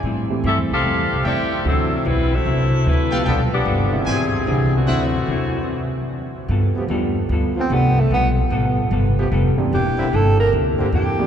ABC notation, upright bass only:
X:1
M:4/4
L:1/8
Q:"Swing" 1/4=149
K:Gmix
V:1 name="Upright bass" clef=bass
A,,2 (3G,, E,, C,, (3F,, E,, C,, E,,2 | D,,2 B,,,2 C,,2 D,,2 | B,,,2 G,,,2 ^G,,,2 ^B,,,2 | D,,2 E,,2 z4 |
G,,2 E,,2 D,,2 C,,2 | B,,,2 A,,,2 G,,,2 F,,, z | E,,,2 G,,,2 D,,2 E,,2 |]